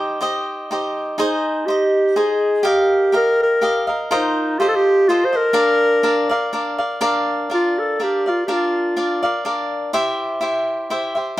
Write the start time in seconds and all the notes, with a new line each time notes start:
Already playing: D#4 G4 C5 D#5
0.21 D#4 G4 C5 D#5
0.71 D#4 G4 C5 D#5
1.18 D#4 G#4 C5 D#5
1.66 D#4 G4 C5 D#5
2.16 D#4 G#4 C5 D#5
2.63 G4 A#4 D#5 F5
2.67 G4
3.12 G4 A#4 D#5 F5
3.43 A#4
3.61 G4 A#4 D#5 F5
3.87 A#4 D#5 F5
4.11 D#4 F4 A#4 C5 D#5
4.59 F4 G4 A4 C5 D#5
4.68 A4
4.75 G4
5.08 F4 A4 C5 D#5
5.25 C5
5.33 A4 A#4 C5 D#5
5.53 D4 A#4 D5 F5
6.03 D4 A#4 D5 F5
6.29 A#4 D5 F5
6.53 D4 A#4 D5 F5
6.78 A#4 D5 F5
7.01 D4 A#4 D5 F5
7.50 D4 A#4 D5 F5
7.54 F4
7.79 A4
8.00 D4 G4 A#4 D5 F5
8.26 F4 A#4 D5 F5
8.46 D4 G4 A#4 D5 F5
8.52 F4
8.96 D4 A#4 D5 F5
9.23 A#4 D5 F5
9.45 D4 A#4 D5 F5
9.93 E4 G4 C5 E5
10.41 E4 G4 C5 E5
10.90 E4 G4 C5 E5
11.15 G4 C5 E5